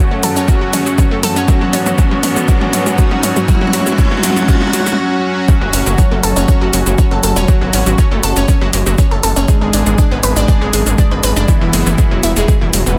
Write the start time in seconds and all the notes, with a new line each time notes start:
Already playing: F#2 C#3 F#3 A3 C#4 F#4, riser
0.11 A3
0.23 F#3 C#4 F#4 A4, open hi-hat, mid tom, shaker
0.36 C#4, shaker
0.48 F#3 C#4 F#4, kick, mid tom, shaker
0.61 F#3
0.73 C#4, open hi-hat, mid tom, shaker
0.86 F#3, shaker
0.98 C#4, kick, mid tom, shaker
1.11 A3
1.23 F#3 C#4 F#4 A4, open hi-hat, mid tom, shaker
1.36 C#4, shaker
1.48 G#2 D3 F#3 B3 C#4 F#4, kick, mid tom, shaker
1.61 F#3, mid tom
1.73 C#4, open hi-hat, mid tom, shaker
1.86 F#3, mid tom, shaker
1.98 F#3 C#4 F#4, kick, mid tom, shaker
2.11 F#3, mid tom
2.23 C#4, open hi-hat, mid tom, shaker
2.36 F#3, mid tom, shaker
2.48 F#3 C#4 F#4, kick, mid tom, shaker
2.61 F#3, mid tom
2.73 C#4, open hi-hat, mid tom, shaker
2.86 F#3, mid tom, shaker
2.98 F#3 C#4 F#4, kick, mid tom, shaker
3.11 F#3, mid tom
3.23 C#4, open hi-hat, mid tom, shaker
3.36 F#3, mid tom, shaker
3.48 E3 F#3 C#4 F#4, kick, mid tom, shaker
3.55 mid tom
3.61 F#3, mid tom
3.67 mid tom
3.73 F#3 C#4 F#4, open hi-hat, mid tom, shaker
3.80 mid tom
3.86 F#3, mid tom, shaker
3.92 mid tom
3.98 F#3 C#4 F#4, kick, mid tom, shaker
4.05 mid tom
4.11 F#3, mid tom
4.17 mid tom
4.23 F#3 C#4 F#4, open hi-hat, mid tom, shaker
4.30 mid tom
4.36 F#3, mid tom, shaker
4.42 mid tom
4.48 F#3 C#4 F#4, kick, mid tom, shaker
4.55 mid tom
4.61 F#3, mid tom
4.67 mid tom
4.73 F#3 C#4 F#4, open hi-hat, mid tom, shaker
4.80 mid tom
4.86 F#3, mid tom, shaker
4.92 mid tom
4.98 F#3 C#4 F#4
5.23 F#3 C#4 F#4
5.48 F#2 F#3 C#4 F#4, kick, impact, shaker
5.61 F#1 F#3
5.73 F#1 C#4, open hi-hat, shaker
5.86 F#1 F#3, shaker
5.98 C#4, kick, shaker
6.11 F#1 A3
6.23 F#1 F#3 C#4 F#4 A4, open hi-hat, shaker
6.36 F#1 C#4, shaker
6.48 C#4, kick, shaker
6.61 F#1 F#3
6.73 F#1 F#3, open hi-hat, shaker
6.86 F#1 F#3, shaker
6.98 C#4, kick, shaker
7.11 F#1 A4
7.23 F#1 A4, open hi-hat, shaker
7.36 E1 C#4, shaker
7.48 F#3 C#4 F#4, kick, shaker
7.61 G#1 F#3
7.73 G#1 C#4, open hi-hat, shaker
7.86 G#1 F#3, shaker
7.98 C#4, kick, shaker
8.11 F#1 A3
8.23 F#1 F#3 C#4 F#4 A4, open hi-hat, shaker
8.36 F#1 C#4, shaker
8.48 C#4, kick, shaker
8.61 F#1 F#3
8.73 F#1 F#3, open hi-hat, shaker
8.86 F#1 F#3, shaker
8.98 C#4, kick, shaker
9.11 F#1 A4
9.23 F#1 A4, open hi-hat, shaker
9.36 F#1 C#4, shaker
9.48 G#3 D4 G#4, kick, shaker
9.61 G#1 G#3
9.73 G#1 D4, open hi-hat, shaker
9.86 G#1 G#3, shaker
9.98 D4, kick, shaker
10.11 G#1 B3
10.23 G#1 G#3 D4 G#4 B4, open hi-hat, shaker
10.36 G#1 D4, shaker
10.48 D4, kick, shaker
10.61 G#1 G#3
10.73 G#1 G#3, open hi-hat, shaker
10.86 G#1 G#3, shaker
10.98 D4, kick, shaker
11.11 G#1 B4
11.23 G#1 B4, open hi-hat, shaker
11.36 F#1 D4, shaker
11.48 E3 B3 E4, kick, shaker
11.61 E1 E3
11.73 F#1 G#3, open hi-hat, shaker
11.86 F#1 E3, shaker
11.98 G#3, kick, shaker
12.11 E1 F#3
12.23 E1 E3 B3 E4, open hi-hat, shaker
12.36 E1 G#3, shaker
12.48 G#3, kick, shaker
12.61 E1 E3
12.73 E1 F#3, open hi-hat, shaker
12.86 E1 E3 B3 E4, shaker